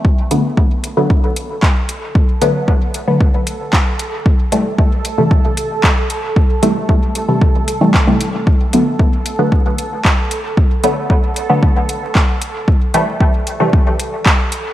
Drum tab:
HH |-x-x-x-x|-x-x-x-x|-x-x-x-x|-x-x-x-x|
CP |------x-|------x-|------x-|------x-|
BD |o-o-o-o-|o-o-o-o-|o-o-o-o-|o-o-o-o-|

HH |-x-x-x-x|-x-x-x-x|-x-x-x-x|
CP |------x-|------x-|------x-|
BD |o-o-o-o-|o-o-o-o-|o-o-o-o-|